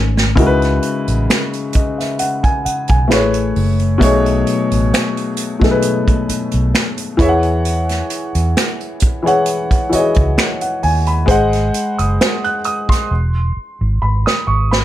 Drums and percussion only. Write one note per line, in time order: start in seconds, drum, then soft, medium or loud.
0.17 snare medium
0.37 kick loud
0.37 closed hi-hat medium
0.62 snare soft
0.62 closed hi-hat soft
0.83 closed hi-hat medium
1.08 closed hi-hat soft
1.30 finger snap medium
1.30 snare loud
1.30 closed hi-hat loud
1.53 closed hi-hat soft
1.73 kick medium
1.73 closed hi-hat medium
2.00 snare soft
2.00 closed hi-hat soft
2.19 closed hi-hat medium
2.44 kick medium
2.44 closed hi-hat soft
2.66 closed hi-hat medium
2.88 kick medium
2.88 closed hi-hat soft
3.11 finger snap medium
3.11 snare loud
3.11 closed hi-hat medium
3.34 closed hi-hat medium
3.56 open hi-hat soft
3.80 closed hi-hat soft
4.01 kick loud
4.01 closed hi-hat medium
4.26 closed hi-hat soft
4.47 closed hi-hat medium
4.71 closed hi-hat medium
4.94 finger snap medium
4.94 snare loud
4.94 closed hi-hat loud
5.17 closed hi-hat soft
5.37 closed hi-hat medium
5.61 kick medium
5.61 snare soft
5.61 closed hi-hat soft
5.82 closed hi-hat medium
6.08 kick medium
6.08 closed hi-hat soft
6.29 closed hi-hat medium
6.52 closed hi-hat soft
6.75 finger snap medium
6.75 snare medium
6.75 closed hi-hat medium
6.98 closed hi-hat medium
7.19 kick loud
7.19 closed hi-hat medium
7.43 closed hi-hat soft
7.65 closed hi-hat medium
7.89 snare soft
7.89 closed hi-hat soft
8.10 closed hi-hat medium
8.35 closed hi-hat soft
8.57 finger snap medium
8.57 snare loud
8.57 closed hi-hat medium
8.81 closed hi-hat soft
9.00 kick loud
9.00 closed hi-hat medium
9.27 closed hi-hat soft
9.46 closed hi-hat medium
9.71 kick medium
9.71 closed hi-hat soft
9.93 closed hi-hat medium
10.14 kick medium
10.14 closed hi-hat soft
10.38 finger snap medium
10.38 snare loud
10.38 closed hi-hat medium
10.61 closed hi-hat medium
10.83 open hi-hat soft
11.06 closed hi-hat soft
11.28 kick loud
11.28 closed hi-hat medium
11.53 snare soft
11.53 closed hi-hat soft
11.74 closed hi-hat medium
11.99 closed hi-hat medium
12.21 finger snap medium
12.21 snare loud
12.21 closed hi-hat medium
12.44 closed hi-hat soft
12.64 closed hi-hat medium
12.89 kick medium
12.89 snare soft
12.89 closed hi-hat medium
14.27 snare medium
14.73 snare medium